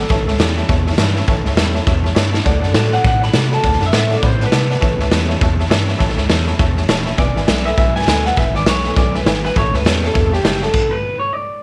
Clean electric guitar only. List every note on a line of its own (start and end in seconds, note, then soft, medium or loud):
0.00 0.59 A4 medium
2.46 2.90 D5 medium
2.93 3.05 F#5 medium
3.07 3.23 F#5 medium
3.24 3.51 B5 loud
3.54 3.83 A5 loud
3.86 3.95 E5 medium
3.98 4.16 E5 medium
4.16 4.25 D5 medium
4.26 4.43 C5 medium
4.46 5.28 B4 medium
7.18 7.67 D5 loud
7.65 7.76 E5 loud
7.78 7.96 E5 medium
7.96 8.24 G#5 loud
8.26 8.37 F#5 loud
8.38 8.54 E5 medium
8.56 8.67 D5 loud
8.68 8.96 C#5 loud
8.97 9.15 D5 medium
9.15 9.43 B4 medium
9.45 9.57 B4 loud
9.58 9.75 C#5 loud
9.75 10.05 B4 loud
10.06 10.33 A4 medium
10.34 10.63 G4 medium
10.63 10.93 A4 medium
10.91 11.19 B4 loud
11.19 11.33 C#5 medium
11.33 11.63 D5 medium